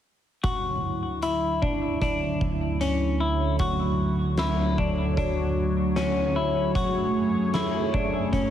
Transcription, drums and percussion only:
0.44 kick, closed hi-hat
1.22 closed hi-hat
1.63 kick
2.02 kick, closed hi-hat
2.41 kick
2.81 closed hi-hat
3.59 kick, closed hi-hat
4.37 snare, closed hi-hat
4.78 kick
5.17 kick, closed hi-hat
5.96 snare, closed hi-hat
6.75 kick, closed hi-hat
7.54 snare, closed hi-hat
7.94 kick
8.33 kick, closed hi-hat

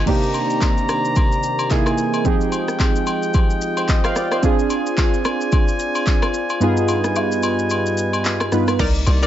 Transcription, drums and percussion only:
0.07 kick, crash
0.23 shaker
0.34 high agogo, shaker
0.50 shaker
0.61 kick, clap, high agogo, shaker
0.78 shaker
0.89 cross-stick, high agogo, shaker
1.05 shaker
1.16 kick, high agogo, shaker
1.32 shaker
1.43 shaker
1.59 high agogo, shaker
1.71 kick, clap, shaker
1.86 cross-stick, high agogo, shaker
1.98 shaker
2.14 high agogo, shaker
2.25 kick, shaker
2.41 shaker
2.52 high agogo, shaker
2.68 cross-stick, shaker
2.80 kick, clap, high agogo, shaker
2.96 shaker
3.07 high agogo, shaker
3.23 shaker
3.34 kick, high agogo, shaker
3.50 shaker
3.61 shaker
3.77 high agogo, shaker
3.89 kick, clap, shaker
4.04 cross-stick, high agogo, shaker
4.16 cross-stick, shaker
4.32 cross-stick, high agogo, shaker
4.43 kick, shaker
4.59 shaker
4.70 high agogo, shaker
4.86 shaker
4.98 kick, clap, high agogo, shaker
5.14 shaker
5.25 cross-stick, high agogo, shaker
5.41 shaker
5.52 kick, high agogo, shaker
5.68 shaker
5.79 shaker
5.95 high agogo, shaker
6.07 kick, clap, shaker
6.22 cross-stick, high agogo, shaker
6.34 shaker
6.50 high agogo, shaker
6.61 shaker
6.77 shaker
6.88 high agogo, shaker
7.04 cross-stick, shaker
7.16 high agogo, low woodblock, shaker
7.32 shaker
7.43 high agogo, shaker
7.59 shaker
7.70 high agogo, shaker
7.86 shaker
7.98 shaker
8.13 high agogo, shaker
8.25 clap, shaker
8.40 cross-stick, high agogo, shaker
8.52 cross-stick, shaker
8.68 cross-stick, high agogo, shaker
8.79 kick, crash, shaker
8.95 shaker
9.07 high agogo, shaker
9.23 shaker

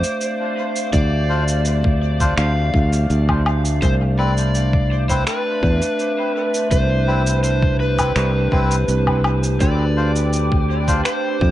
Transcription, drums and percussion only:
0.04 shaker
0.21 shaker
0.76 shaker
0.93 kick, shaker
1.48 shaker
1.65 shaker
1.84 kick
2.20 kick, shaker
2.38 finger snap, shaker
2.74 kick
2.93 shaker
3.10 shaker
3.29 kick, low woodblock
3.46 low woodblock
3.65 shaker
3.82 kick, shaker
4.37 shaker
4.55 shaker
4.73 kick
5.10 kick, shaker
5.27 finger snap, shaker
5.63 kick
5.82 shaker
5.99 shaker
6.54 shaker
6.71 kick, shaker
7.27 shaker
7.44 shaker
7.63 kick
7.99 kick, low woodblock, shaker
8.16 finger snap, shaker
8.52 kick
8.71 shaker
8.88 shaker
9.07 kick, low woodblock
9.24 low woodblock
9.43 shaker
9.60 kick, shaker
10.16 shaker
10.33 shaker
10.52 kick
10.88 kick, shaker
11.05 finger snap, shaker
11.41 kick

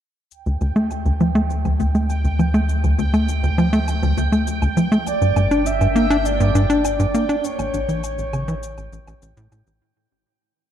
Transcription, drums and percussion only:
0.31 cabasa
0.46 cabasa
0.61 cabasa, low woodblock
0.76 cabasa
0.91 cabasa, low woodblock
1.06 cabasa
1.20 cabasa
1.35 cabasa, low woodblock
1.50 cabasa
1.65 cabasa, low woodblock
1.80 cabasa
1.95 cabasa
2.10 cabasa, low woodblock
2.25 cabasa
2.39 cabasa, low woodblock
2.54 cabasa
2.69 cabasa
2.84 cabasa, low woodblock
2.99 cabasa
3.14 cabasa, low woodblock
3.29 cabasa
3.43 cabasa
3.58 cabasa, low woodblock
3.73 cabasa
3.88 cabasa, low woodblock
4.03 cabasa
4.18 cabasa
4.33 cabasa, low woodblock
4.47 cabasa
4.62 cabasa, low woodblock
4.77 cabasa
4.92 cabasa
5.07 cabasa, low woodblock
5.22 cabasa
5.36 cabasa, low woodblock
5.51 cabasa
5.66 cabasa
5.81 cabasa, low woodblock
5.96 cabasa
6.11 cabasa, low woodblock
6.25 cabasa
6.40 cabasa
6.55 cabasa, low woodblock
6.70 cabasa
6.85 cabasa, low woodblock
7.00 cabasa
7.15 cabasa
7.29 cabasa, low woodblock
7.44 cabasa
7.59 cabasa, low woodblock
7.74 cabasa
7.89 cabasa
8.04 cabasa, low woodblock
8.19 cabasa
8.33 cabasa, low woodblock
8.48 cabasa
8.63 cabasa
8.78 cabasa, low woodblock
8.93 cabasa
9.07 cabasa, low woodblock
9.22 cabasa
9.37 cabasa
9.52 cabasa, low woodblock
9.67 cabasa

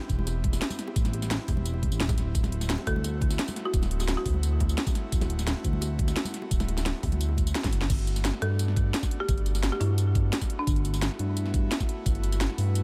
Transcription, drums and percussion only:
0.09 kick, closed hi-hat, tambourine
0.19 high conga
0.27 closed hi-hat, tambourine, high bongo
0.44 kick, closed hi-hat, high conga
0.53 snare, tambourine, high bongo
0.62 snare, closed hi-hat
0.70 closed hi-hat, tambourine, high conga
0.79 snare, closed hi-hat, tambourine
0.88 high bongo
0.96 kick, closed hi-hat, tambourine
1.05 snare, closed hi-hat, tambourine, high conga
1.13 closed hi-hat, high bongo
1.22 snare, tambourine
1.30 snare, closed hi-hat, tambourine, high conga
1.48 kick, open hi-hat, tambourine, high bongo
1.57 high conga
1.66 closed hi-hat, tambourine
1.74 high bongo
1.83 kick, closed hi-hat, high conga
1.92 tambourine
2.00 snare, closed hi-hat
2.08 kick, closed hi-hat, tambourine, high bongo, high conga
2.18 snare, closed hi-hat, tambourine
2.35 kick, closed hi-hat, tambourine
2.43 snare, closed hi-hat, tambourine, high bongo, high conga
2.52 closed hi-hat
2.61 snare, tambourine
2.69 snare, closed hi-hat, tambourine, high conga
2.78 high bongo
2.87 kick, closed hi-hat, tambourine
2.96 high conga
3.04 closed hi-hat, tambourine, high bongo
3.21 kick, closed hi-hat, high conga
3.31 snare, tambourine
3.39 snare, closed hi-hat, high bongo
3.48 closed hi-hat, tambourine, high conga
3.56 snare, closed hi-hat, tambourine
3.65 high bongo
3.74 kick, closed hi-hat, tambourine
3.82 snare, closed hi-hat, tambourine, high conga
3.91 closed hi-hat
4.00 snare, tambourine, high bongo
4.08 snare, closed hi-hat, tambourine, high conga
4.25 kick, open hi-hat, tambourine, high bongo
4.34 high conga
4.43 closed hi-hat, tambourine
4.60 kick, closed hi-hat, high bongo, high conga
4.69 tambourine
4.78 snare, closed hi-hat
4.86 kick, closed hi-hat, tambourine, high bongo, high conga
4.95 snare, closed hi-hat, tambourine
5.12 kick, closed hi-hat, tambourine
5.21 snare, closed hi-hat, tambourine, high bongo, high conga
5.30 closed hi-hat
5.39 snare, tambourine
5.47 snare, closed hi-hat, tambourine, high bongo, high conga
5.64 kick, closed hi-hat, tambourine
5.73 high conga
5.81 closed hi-hat, tambourine, high bongo
5.99 kick, closed hi-hat, high conga
6.08 snare, tambourine, high bongo
6.16 snare, closed hi-hat
6.25 closed hi-hat, tambourine, high conga
6.34 snare, closed hi-hat, tambourine
6.42 high bongo
6.51 kick, closed hi-hat, tambourine
6.60 snare, closed hi-hat, tambourine, high conga
6.68 closed hi-hat, high bongo
6.78 snare, closed hi-hat, tambourine
6.85 snare, closed hi-hat, tambourine, high conga
7.03 kick, open hi-hat, tambourine, high bongo
7.12 closed hi-hat, high conga
7.21 closed hi-hat, tambourine
7.29 high bongo
7.37 kick, closed hi-hat, tambourine, high conga
7.47 tambourine
7.55 snare, closed hi-hat
7.64 kick, snare, closed hi-hat, tambourine, high bongo, high conga
7.73 closed hi-hat, tambourine
7.81 snare
7.90 kick, closed hi-hat, crash, tambourine
7.99 closed hi-hat
8.07 closed hi-hat, tambourine
8.16 snare, closed hi-hat, tambourine
8.25 snare, closed hi-hat, tambourine
8.34 snare
8.42 closed hi-hat
8.59 closed hi-hat, tambourine
8.68 snare
8.77 kick, closed hi-hat, tambourine
8.94 snare, closed hi-hat, tambourine
9.03 kick, snare, tambourine
9.11 closed hi-hat
9.29 kick, closed hi-hat, tambourine
9.38 closed hi-hat
9.46 closed hi-hat, tambourine
9.55 snare, closed hi-hat, tambourine
9.63 snare, closed hi-hat, tambourine
9.72 snare
9.81 open hi-hat, tambourine
9.98 closed hi-hat, tambourine
10.15 kick, closed hi-hat, tambourine
10.33 snare, closed hi-hat, tambourine
10.41 kick, snare, tambourine
10.50 closed hi-hat
10.67 kick, closed hi-hat, tambourine
10.76 closed hi-hat
10.85 closed hi-hat, tambourine
10.94 snare, closed hi-hat, tambourine
11.02 snare, closed hi-hat, tambourine
11.11 snare
11.19 closed hi-hat
11.37 closed hi-hat, tambourine
11.46 snare
11.54 kick, closed hi-hat, tambourine
11.72 snare, closed hi-hat, tambourine
11.80 kick, snare, tambourine
11.89 closed hi-hat
12.06 kick, closed hi-hat, tambourine
12.15 closed hi-hat
12.23 closed hi-hat, tambourine
12.32 snare, closed hi-hat, tambourine
12.41 snare, closed hi-hat, tambourine
12.50 snare
12.58 open hi-hat, tambourine
12.75 closed hi-hat, tambourine

